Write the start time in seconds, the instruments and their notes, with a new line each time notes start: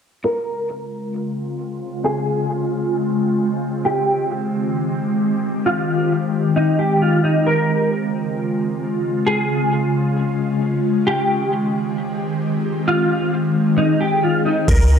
0.24 ambient pad C#3 G#3 C4 F4, clean electric guitar A#4
2.05 clean electric guitar G#4
3.85 ambient pad D#3 G4, clean electric guitar G4
5.66 clean electric guitar F4
6.56 clean electric guitar D#4
6.79 clean electric guitar G4
7.02 clean electric guitar F4
7.24 clean electric guitar D#4
7.46 ambient pad C#3 G#3 F4, clean electric guitar A#4
9.27 ambient pad C#4, clean electric guitar G#4
11.07 ambient pad D#3 C4 G4, clean electric guitar G4
12.88 clean electric guitar F4, ambient pad G#4
13.78 clean electric guitar D#4
14.01 clean electric guitar G4
14.23 clean electric guitar F4
14.45 clean electric guitar D#4
14.68 808-style bass C#2, ambient pad C#3 G#3 C4 F4, clean electric guitar A#4, kick, closed hi-hat, crash